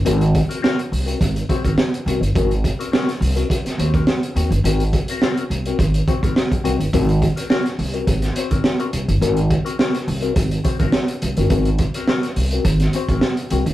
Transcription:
<<
  \new Staff \with { instrumentName = "Clean electric guitar" } { \time 4/4 \key aes \mixolydian \tempo 4 = 105 <c' ges' bes'>16 r8 <c' ges' bes'>16 <c' ges' bes'>16 r8 <c' ges' bes'>16 r8 <c' ges' c''>16 <c' ges' bes'>16 r8 <c' ges' bes'>16 r16 | <c' ges' bes'>16 r8 <c' ges' bes'>16 <c' ges' bes'>16 r8 <c' ges' bes'>16 r8 <c' ges' c''>16 <c' ges' bes'>16 r8 <c' ges' bes'>16 r16 | <c' ges' bes'>16 r8 <c' ges' bes'>16 <c' ges' bes'>16 r8 <c' ges' bes'>16 r8 <c' ges' c''>16 <c' ges' bes'>16 r8 <c' ges' bes'>16 r16 | <c' ges' bes'>16 r8 <c' ges' bes'>16 <c' ges' bes'>16 r8 <c' ges' bes'>16 r8 <c' ges' c''>16 <c' ges' bes'>16 r16 <c' ges' bes'>16 r8 |
<c' ges' bes'>16 r8 <c' ges' bes'>16 <c' ges' bes'>16 r8 <c' ges' bes'>16 r8 <c' ges' c''>16 <c' ges' bes'>16 r8. <c' ges' bes'>16 | <c' ges' bes'>16 r8 <c' ges' bes'>16 <c' ges' bes'>16 r8 <c' ges' bes'>16 r8 <c' ges' c''>16 <c' ges' bes'>16 r8 <c' ges' bes'>16 r16 | }
  \new Staff \with { instrumentName = "Upright bass" } { \clef bass \time 4/4 \key aes \mixolydian aes,,8. r8. c,8 aes,,8 r16 aes,,16 r8 c,16 g,,16 | aes,,8. r8. c,8 r8 ees,8 r8 ees,16 g,,16 | aes,,8. r8. c,8 aes,,8 r16 aes,,16 r8 c,16 g,,16 | aes,,8. r8. c,8 aes,,8 r16 aes,,16 r8 c,16 g,,16 |
aes,,8. r8. c,8 aes,,8 r16 aes,,16 r8 c,16 g,,16 | aes,,8. r8. c,8 aes,,8 r16 aes,,16 r8 c,16 g,,16 | }
  \new DrumStaff \with { instrumentName = "Drums" } \drummode { \time 4/4 hh16 hh16 <hh bd>16 hh16 sn16 hh16 hho16 hh16 <hh bd>16 hh16 <hh bd>16 <hh bd>16 sn16 hh16 hh16 hh16 | <hh bd>16 hh16 <hh bd>16 hh16 sn16 <hh sn>16 hho16 hh16 <hh bd>16 <hh sn>16 hh16 <hh bd>16 sn16 hh16 hh16 hh16 | hh16 hh16 <hh bd>16 hh16 sn16 hh16 hh16 hh16 <hh bd>16 hh16 <hh bd>16 <hh bd>16 sn16 <hh bd>16 hh16 hh16 | <hh bd>16 hh16 <hh bd>16 hh16 sn16 <hh sn>16 hho16 hh16 <hh bd>16 <hh sn>16 hh16 <hh bd>16 sn16 hh16 hh16 hh16 |
hh16 hh16 <hh bd>16 hh16 sn16 <hh sn>16 hho16 hh16 <hh bd>16 hh16 <hh bd>16 <hh bd>16 sn16 hh16 hh16 hh16 | <hh bd>16 hh16 <hh bd>16 hh16 sn16 <hh sn>16 hho16 hh16 <hh bd>16 <hh sn>16 hh16 <hh bd>16 sn16 hh16 hh16 hh16 | }
>>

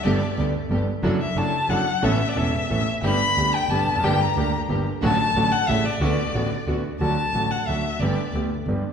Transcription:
<<
  \new Staff \with { instrumentName = "Violin" } { \time 3/4 \key d \major \tempo 4 = 181 d''4 r2 | r8 e''8 a''4 fis''4 | e''8. d''16 e''4 e''8. r16 | b''4. g''8 a''4 |
g''8 bes''4 r4. | a''4. fis''8 e''8 d''8~ | d''2 r4 | a''4. fis''8 e''4 |
d''4 r2 | }
  \new Staff \with { instrumentName = "String section" } { \time 3/4 \key d \major <a b g'>8 r8 <a b g'>8 r8 <a b g'>8 r8 | <d' e' fis'>8 r8 <d' e' fis'>8 r8 <d' e' fis'>8 r8 | <b cis' a'>8 r8 <b cis' a'>8 r8 <b cis' a'>8 r8 | <b d' g'>8 r8 <b d' g'>8 r8 <b d' g'>8 r8 |
<bes d' g'>8 r8 <bes d' g'>8 r8 <bes d' g'>8 r8 | <a d' fis'>8 r8 <a d' fis'>8 r8 <a cis' g'>8 r8 | <b d' fis'>8 r8 <b d' fis'>8 r8 <b d' fis'>8 r8 | r2. |
r2. | }
  \new Staff \with { instrumentName = "Grand piano" } { \clef bass \time 3/4 \key d \major <g,, g, g b d' a'>8 r8 <d, d g b d' a'>8 r8 <g,, g, g b d' a'>8 r8 | <fis, fis d' e' a'>8 r8 <fis, fis d' e' a'>8 r8 <fis, fis d' e' a'>8 r8 | <a,, a, e b cis' a'>8 r8 <e,, e, e b cis' a'>8 r8 <a,, a, e b cis' a'>8 r8 | <g,, g, d g b g'>8 r8 <d, d g b g'>8 r8 <g,, g, d g b g'>8 r32 e,32 f,32 fis,32 |
<g,, g, d g bes g'>8 r8 <d, d g bes g'>8 r8 <g,, g, d g bes g'>8 r8 | <a,, a, d fis a fis'>8 r8 <a,, a, d fis a fis'>8 r8 <a,, a, cis g a e'>8 r8 | <d, d a b fis'>8 r8 <a,, a, d a b fis'>8 r8 <d, d a b fis'>8 r8 | <d, d fis a fis'>8 r8 <a,, a, d fis a fis'>8 r8 <d, d fis a fis'>8 r8 |
<g,, g, d a b g'>8 r8 <d, d a b g'>8 r8 <g,, g, d a b g'>8 r8 | }
  \new Staff \with { instrumentName = "Double bass" } { \clef bass \time 3/4 \key d \major g,,8 r8 d,8 r8 g,,8 r8 | fis,,8 r8 fis,,8 r8 fis,,8 r8 | a,,8 r8 e,,8 r8 a,,8 r8 | g,,8 r8 d,8 r8 g,,8 f,,8 |
g,,8 r8 d,8 r8 g,,8 r8 | a,,8 r8 a,,8 r8 a,,8 r8 | d,8 r8 a,,8 r8 d,8 r8 | d,8 r8 a,,8 r8 d,8 r8 |
g,,8 r8 d,8 r8 g,,8 r8 | }
>>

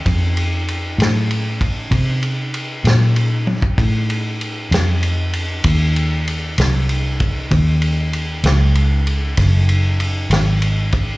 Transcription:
<<
  \new Staff \with { instrumentName = "Fingered electric bass" } { \clef bass \time 12/8 \key f \phrygian \tempo 4. = 64 f,4. a,4. c4. bes,4. | a,4. f,4. ees,4. c,4. | ees,4. des,4. ges,,4. aes,,4. | }
  \new DrumStaff \with { instrumentName = "Drums" } \drummode { \time 12/8 <bd cymr>8 cymr8 cymr8 <cymr sn>8 cymr8 <bd cymr>8 <bd cymr>8 cymr8 cymr8 <cymr sn>8 cymr8 tommh16 bd16 | <bd cymr>8 cymr8 cymr8 <cymr sn>8 cymr8 cymr8 <bd cymr>8 cymr8 cymr8 <cymr sn>8 cymr8 <bd cymr>8 | <bd cymr>8 cymr8 cymr8 <cymr sn>8 cymr8 cymr8 <bd cymr sn>8 cymr8 cymr8 <cymr sn>8 cymr8 <bd cymr>8 | }
>>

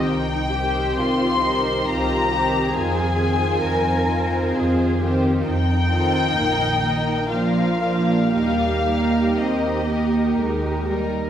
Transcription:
<<
  \new Staff \with { instrumentName = "Violin section" } { \time 3/4 \key ees \major \tempo 4 = 65 g''4 c'''4 bes''4 | aes''2~ aes''8 r8 | g''2 f''4 | f''4 ees''4 r4 | }
  \new Staff \with { instrumentName = "Violin section" } { \time 3/4 \key ees \major r8 <g' c''>4 <g' c''>4 <g' c''>8 | <f' c''>8 <f' c''>4 <f' c''>4 <f' c''>8 | r8 <f' a'>8 <ees' bes'>8 <ees' bes'>8 <d' bes'>8 <d' bes'>8 | <ees' bes'>8 <ees' bes'>4 <ees' bes'>4 <ees' bes'>8 | }
  \new Staff \with { instrumentName = "Cello section" } { \time 3/4 \key ees \major ees'8 g'8 f'8 ees'8 f'8 g'8 | aes'4 bes'4 aes'8 g'8 | ees'2 f'4 | g'2~ g'8 r8 | }
  \new Staff \with { instrumentName = "Viola section" } { \time 3/4 \key ees \major r8 <ees c'>4 <ees c'>4 <ees c'>8 | <ees c'>8 <ees c'>4 <ees c'>4 <ees c'>8 | r8 <ees c'>8 <ees bes>8 <ees bes>8 <f bes>8 <f bes>8 | <g bes>8 <g bes>8 c'8 bes8 aes8 g8 | }
  \new Staff \with { instrumentName = "Double bass section" } { \clef bass \time 3/4 \key ees \major c,4 c,4 c,4 | f,4 f,4 f,4 | f,4 bes,,4 bes,,4 | ees,4 ees,4 ees,4 | }
>>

